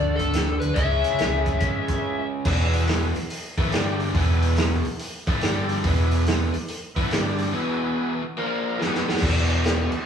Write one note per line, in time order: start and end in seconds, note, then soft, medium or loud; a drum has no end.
0.00 0.22 D2 loud
0.00 0.75 D3 medium
0.00 0.77 A3 medium
0.00 0.55 D4 medium
0.00 0.77 D4 medium
0.00 0.54 F#4 medium
0.00 0.55 A4 medium
0.00 0.15 D5 medium
0.16 0.60 A4 medium
0.16 kick medium
0.16 closed hi-hat medium
0.27 0.57 D2 medium
0.33 snare loud
0.33 closed hi-hat medium
0.60 0.69 D2 medium
0.60 0.76 B4 medium
0.60 closed hi-hat medium
0.74 1.00 C#2 medium
0.74 2.44 C#3 medium
0.74 2.46 G#3 medium
0.74 1.39 C#4 medium
0.74 1.39 E4 medium
0.74 1.39 G#4 medium
0.74 2.26 E5 medium
0.74 kick loud
0.74 closed hi-hat medium
0.80 2.47 C#4 medium
1.04 closed hi-hat medium
1.13 1.21 C#3 medium
1.18 1.55 C#2 medium
1.18 snare loud
1.18 closed hi-hat medium
1.46 kick medium
1.46 closed hi-hat medium
1.60 1.97 G#1 medium
1.60 2.23 C#4 medium
1.60 2.23 E4 medium
1.60 2.23 G#4 medium
1.60 kick loud
1.60 closed hi-hat medium
1.88 kick medium
1.88 closed hi-hat medium
2.45 3.12 E1 medium
2.45 3.15 E2 medium
2.45 3.16 B2 medium
2.45 3.16 E3 loud
2.45 3.07 B3 medium
2.45 3.07 E4 medium
2.45 3.07 G#4 loud
2.45 kick loud
2.45 crash loud
2.73 open hi-hat medium
2.87 snare medium
2.87 open hi-hat medium
3.15 muted fingered electric bass stroke soft
3.15 muted overdriven electric guitar stroke medium
3.15 open hi-hat medium
3.30 open hi-hat medium
3.58 3.71 A1 medium
3.58 3.72 A2 medium
3.58 3.73 E3 loud
3.58 3.73 A3 loud
3.58 3.73 B3 medium
3.58 3.73 E4 medium
3.58 3.74 G#4 loud
3.58 kick loud
3.58 open hi-hat medium
3.72 4.12 G1 loud
3.72 4.15 G2 medium
3.72 4.15 D3 medium
3.72 4.09 G3 medium
3.72 4.16 G3 medium
3.72 4.09 D4 medium
3.72 4.09 G4 loud
3.72 snare loud
3.72 open hi-hat medium
4.00 open hi-hat medium
4.15 4.81 E1 medium
4.15 4.84 E2 medium
4.15 4.85 B2 medium
4.15 4.85 E3 loud
4.15 4.77 B3 medium
4.15 4.77 E4 medium
4.15 4.77 G#4 medium
4.15 kick loud
4.15 open hi-hat medium
4.42 open hi-hat medium
4.56 snare loud
4.56 open hi-hat medium
4.85 muted fingered electric bass stroke soft
4.85 muted overdriven electric guitar stroke medium
4.85 open hi-hat medium
4.99 open hi-hat medium
5.27 5.41 A1 medium
5.27 5.42 A2 medium
5.27 5.42 E3 loud
5.27 5.42 A3 loud
5.27 5.42 B3 medium
5.27 5.42 E4 medium
5.27 5.42 G#4 loud
5.27 kick loud
5.27 open hi-hat medium
5.41 5.81 G1 medium
5.41 5.84 G2 medium
5.41 5.84 D3 medium
5.41 5.78 G3 medium
5.41 5.85 G3 loud
5.41 5.78 D4 medium
5.41 5.78 G4 loud
5.41 snare loud
5.41 open hi-hat medium
5.69 open hi-hat medium
5.83 6.50 E1 medium
5.83 6.53 E2 medium
5.83 6.54 B2 medium
5.83 6.54 E3 loud
5.83 6.45 B3 medium
5.83 6.45 E4 medium
5.83 6.45 G#4 medium
5.83 kick loud
5.83 open hi-hat medium
6.11 open hi-hat medium
6.26 snare loud
6.26 open hi-hat medium
6.54 muted fingered electric bass stroke soft
6.54 muted overdriven electric guitar stroke medium
6.54 open hi-hat medium
6.68 open hi-hat medium
6.95 7.10 A1 medium
6.95 7.11 A2 medium
6.95 7.11 E3 loud
6.95 7.11 A3 loud
6.95 7.10 B3 medium
6.95 7.10 E4 medium
6.95 7.10 B4 medium
6.95 kick loud
6.95 open hi-hat medium
7.10 7.50 G1 medium
7.10 7.53 G2 medium
7.10 7.53 D3 medium
7.10 7.48 G3 medium
7.10 7.54 G3 medium
7.10 7.48 D4 medium
7.10 7.48 G4 medium
7.10 snare loud
7.10 open hi-hat medium
7.38 open hi-hat medium
7.52 8.22 E2 medium
7.52 8.22 B2 loud
7.52 8.23 E3 loud
7.52 8.14 B3 medium
7.52 8.14 E4 medium
7.52 8.14 G#4 loud
8.23 muted overdriven electric guitar stroke medium
8.36 8.79 A#2 medium
8.36 8.80 F3 medium
8.36 8.59 A#3 medium
8.36 8.80 A#3 loud
8.36 8.60 F4 medium
8.36 8.60 A#4 loud
8.64 8.79 A#3 medium
8.64 8.79 F4 medium
8.64 8.79 A#4 medium
8.79 9.06 E2 medium
8.79 9.06 B2 medium
8.79 9.07 E3 medium
8.79 9.16 B3 medium
8.79 9.16 E4 medium
8.79 9.16 G#4 loud
8.79 snare medium
8.94 snare medium
9.08 9.21 B2 medium
9.08 9.22 F#3 medium
9.08 9.22 B3 loud
9.08 snare medium
9.16 snare medium
9.22 9.88 E1 medium
9.22 9.90 E2 medium
9.22 9.91 B2 medium
9.22 9.92 E3 loud
9.22 kick loud
9.22 crash loud
9.22 crash medium
9.50 crash medium
9.64 snare loud
9.64 crash medium
9.91 muted overdriven electric guitar stroke medium
9.91 muted fingered electric bass stroke soft
9.91 crash medium